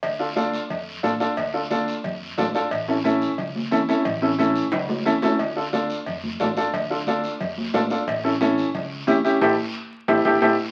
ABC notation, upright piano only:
X:1
M:4/4
L:1/8
Q:1/4=179
K:Dm
V:1 name="Upright piano"
z [DFA] [DFA] z3 [DFA] [DFA] | z [DFA] [DFA] z3 [DFA] [DFA] | z [^CEA] [CEA] z3 [CEA] [CEA] | z [^CEA] [CEA] z3 [CEA] [CEA] |
z [DFA] [DFA] z3 [DFA] [DFA] | z [DFA] [DFA] z3 [DFA] [DFA] | z [^CEA] [CEA] z3 [CEG] [CEG] | [EGA] z3 [EGA] [EGA] [EGA] z |]